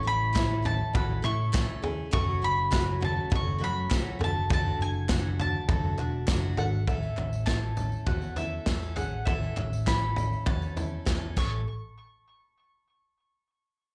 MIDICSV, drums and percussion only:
0, 0, Header, 1, 2, 480
1, 0, Start_track
1, 0, Key_signature, 3, "major"
1, 0, Tempo, 592885
1, 1722, Time_signature, 4, 2, 24, 8
1, 5565, Tempo, 598205
1, 11242, End_track
2, 0, Start_track
2, 0, Title_t, "Drums"
2, 288, Note_on_c, 9, 39, 97
2, 289, Note_on_c, 9, 36, 112
2, 290, Note_on_c, 9, 54, 99
2, 291, Note_on_c, 9, 38, 127
2, 369, Note_off_c, 9, 39, 0
2, 370, Note_off_c, 9, 36, 0
2, 371, Note_off_c, 9, 54, 0
2, 372, Note_off_c, 9, 38, 0
2, 528, Note_on_c, 9, 43, 91
2, 609, Note_off_c, 9, 43, 0
2, 768, Note_on_c, 9, 36, 127
2, 770, Note_on_c, 9, 43, 127
2, 849, Note_off_c, 9, 36, 0
2, 851, Note_off_c, 9, 43, 0
2, 1008, Note_on_c, 9, 39, 76
2, 1089, Note_off_c, 9, 39, 0
2, 1244, Note_on_c, 9, 39, 108
2, 1248, Note_on_c, 9, 36, 127
2, 1248, Note_on_c, 9, 54, 98
2, 1251, Note_on_c, 9, 38, 125
2, 1325, Note_off_c, 9, 39, 0
2, 1329, Note_off_c, 9, 36, 0
2, 1329, Note_off_c, 9, 54, 0
2, 1332, Note_off_c, 9, 38, 0
2, 1486, Note_on_c, 9, 43, 86
2, 1567, Note_off_c, 9, 43, 0
2, 1727, Note_on_c, 9, 43, 127
2, 1728, Note_on_c, 9, 36, 127
2, 1808, Note_off_c, 9, 43, 0
2, 1809, Note_off_c, 9, 36, 0
2, 2203, Note_on_c, 9, 39, 100
2, 2203, Note_on_c, 9, 54, 98
2, 2207, Note_on_c, 9, 36, 119
2, 2207, Note_on_c, 9, 38, 120
2, 2284, Note_off_c, 9, 39, 0
2, 2284, Note_off_c, 9, 54, 0
2, 2288, Note_off_c, 9, 36, 0
2, 2288, Note_off_c, 9, 38, 0
2, 2449, Note_on_c, 9, 43, 99
2, 2530, Note_off_c, 9, 43, 0
2, 2686, Note_on_c, 9, 43, 127
2, 2687, Note_on_c, 9, 36, 127
2, 2767, Note_off_c, 9, 43, 0
2, 2768, Note_off_c, 9, 36, 0
2, 3161, Note_on_c, 9, 39, 94
2, 3167, Note_on_c, 9, 36, 122
2, 3168, Note_on_c, 9, 38, 127
2, 3168, Note_on_c, 9, 54, 93
2, 3242, Note_off_c, 9, 39, 0
2, 3248, Note_off_c, 9, 36, 0
2, 3249, Note_off_c, 9, 38, 0
2, 3249, Note_off_c, 9, 54, 0
2, 3406, Note_on_c, 9, 43, 92
2, 3487, Note_off_c, 9, 43, 0
2, 3647, Note_on_c, 9, 36, 127
2, 3647, Note_on_c, 9, 43, 127
2, 3728, Note_off_c, 9, 36, 0
2, 3728, Note_off_c, 9, 43, 0
2, 4120, Note_on_c, 9, 39, 92
2, 4122, Note_on_c, 9, 38, 118
2, 4125, Note_on_c, 9, 36, 114
2, 4131, Note_on_c, 9, 54, 102
2, 4201, Note_off_c, 9, 39, 0
2, 4203, Note_off_c, 9, 38, 0
2, 4206, Note_off_c, 9, 36, 0
2, 4212, Note_off_c, 9, 54, 0
2, 4368, Note_on_c, 9, 43, 88
2, 4449, Note_off_c, 9, 43, 0
2, 4605, Note_on_c, 9, 36, 127
2, 4605, Note_on_c, 9, 43, 127
2, 4685, Note_off_c, 9, 36, 0
2, 4686, Note_off_c, 9, 43, 0
2, 4844, Note_on_c, 9, 39, 65
2, 4925, Note_off_c, 9, 39, 0
2, 5080, Note_on_c, 9, 39, 87
2, 5083, Note_on_c, 9, 38, 118
2, 5085, Note_on_c, 9, 36, 123
2, 5085, Note_on_c, 9, 54, 106
2, 5161, Note_off_c, 9, 39, 0
2, 5164, Note_off_c, 9, 38, 0
2, 5165, Note_off_c, 9, 36, 0
2, 5166, Note_off_c, 9, 54, 0
2, 5322, Note_on_c, 9, 43, 79
2, 5403, Note_off_c, 9, 43, 0
2, 5566, Note_on_c, 9, 36, 97
2, 5566, Note_on_c, 9, 43, 95
2, 5646, Note_off_c, 9, 36, 0
2, 5647, Note_off_c, 9, 43, 0
2, 5688, Note_on_c, 9, 54, 23
2, 5768, Note_off_c, 9, 54, 0
2, 5803, Note_on_c, 9, 39, 60
2, 5809, Note_on_c, 9, 43, 81
2, 5883, Note_off_c, 9, 39, 0
2, 5890, Note_off_c, 9, 43, 0
2, 5929, Note_on_c, 9, 54, 66
2, 6009, Note_off_c, 9, 54, 0
2, 6040, Note_on_c, 9, 39, 85
2, 6045, Note_on_c, 9, 36, 90
2, 6046, Note_on_c, 9, 38, 96
2, 6048, Note_on_c, 9, 54, 86
2, 6121, Note_off_c, 9, 39, 0
2, 6125, Note_off_c, 9, 36, 0
2, 6126, Note_off_c, 9, 38, 0
2, 6128, Note_off_c, 9, 54, 0
2, 6282, Note_on_c, 9, 54, 70
2, 6284, Note_on_c, 9, 43, 72
2, 6363, Note_off_c, 9, 54, 0
2, 6365, Note_off_c, 9, 43, 0
2, 6403, Note_on_c, 9, 54, 25
2, 6483, Note_off_c, 9, 54, 0
2, 6522, Note_on_c, 9, 43, 101
2, 6523, Note_on_c, 9, 36, 105
2, 6602, Note_off_c, 9, 43, 0
2, 6604, Note_off_c, 9, 36, 0
2, 6643, Note_on_c, 9, 54, 25
2, 6723, Note_off_c, 9, 54, 0
2, 6759, Note_on_c, 9, 43, 75
2, 6768, Note_on_c, 9, 54, 63
2, 6840, Note_off_c, 9, 43, 0
2, 6848, Note_off_c, 9, 54, 0
2, 7000, Note_on_c, 9, 38, 101
2, 7004, Note_on_c, 9, 39, 97
2, 7005, Note_on_c, 9, 36, 98
2, 7008, Note_on_c, 9, 54, 85
2, 7080, Note_off_c, 9, 38, 0
2, 7084, Note_off_c, 9, 39, 0
2, 7085, Note_off_c, 9, 36, 0
2, 7088, Note_off_c, 9, 54, 0
2, 7129, Note_on_c, 9, 54, 26
2, 7209, Note_off_c, 9, 54, 0
2, 7243, Note_on_c, 9, 43, 75
2, 7248, Note_on_c, 9, 54, 62
2, 7324, Note_off_c, 9, 43, 0
2, 7328, Note_off_c, 9, 54, 0
2, 7487, Note_on_c, 9, 36, 103
2, 7489, Note_on_c, 9, 43, 101
2, 7567, Note_off_c, 9, 36, 0
2, 7569, Note_off_c, 9, 43, 0
2, 7617, Note_on_c, 9, 54, 23
2, 7698, Note_off_c, 9, 54, 0
2, 7727, Note_on_c, 9, 39, 70
2, 7728, Note_on_c, 9, 43, 90
2, 7807, Note_off_c, 9, 39, 0
2, 7808, Note_off_c, 9, 43, 0
2, 7857, Note_on_c, 9, 54, 63
2, 7938, Note_off_c, 9, 54, 0
2, 7969, Note_on_c, 9, 36, 97
2, 7969, Note_on_c, 9, 39, 106
2, 7972, Note_on_c, 9, 38, 100
2, 7973, Note_on_c, 9, 54, 85
2, 8049, Note_off_c, 9, 36, 0
2, 8049, Note_off_c, 9, 39, 0
2, 8052, Note_off_c, 9, 38, 0
2, 8053, Note_off_c, 9, 54, 0
2, 8205, Note_on_c, 9, 43, 78
2, 8215, Note_on_c, 9, 54, 64
2, 8285, Note_off_c, 9, 43, 0
2, 8295, Note_off_c, 9, 54, 0
2, 8335, Note_on_c, 9, 54, 24
2, 8415, Note_off_c, 9, 54, 0
2, 8444, Note_on_c, 9, 43, 114
2, 8449, Note_on_c, 9, 36, 116
2, 8525, Note_off_c, 9, 43, 0
2, 8529, Note_off_c, 9, 36, 0
2, 8570, Note_on_c, 9, 54, 25
2, 8650, Note_off_c, 9, 54, 0
2, 8690, Note_on_c, 9, 54, 68
2, 8692, Note_on_c, 9, 43, 75
2, 8770, Note_off_c, 9, 54, 0
2, 8772, Note_off_c, 9, 43, 0
2, 8927, Note_on_c, 9, 38, 103
2, 8930, Note_on_c, 9, 54, 85
2, 8931, Note_on_c, 9, 36, 107
2, 8933, Note_on_c, 9, 39, 92
2, 9008, Note_off_c, 9, 38, 0
2, 9010, Note_off_c, 9, 54, 0
2, 9011, Note_off_c, 9, 36, 0
2, 9013, Note_off_c, 9, 39, 0
2, 9168, Note_on_c, 9, 54, 75
2, 9172, Note_on_c, 9, 36, 94
2, 9172, Note_on_c, 9, 49, 78
2, 9178, Note_on_c, 9, 39, 81
2, 9248, Note_off_c, 9, 54, 0
2, 9252, Note_off_c, 9, 36, 0
2, 9252, Note_off_c, 9, 49, 0
2, 9259, Note_off_c, 9, 39, 0
2, 11242, End_track
0, 0, End_of_file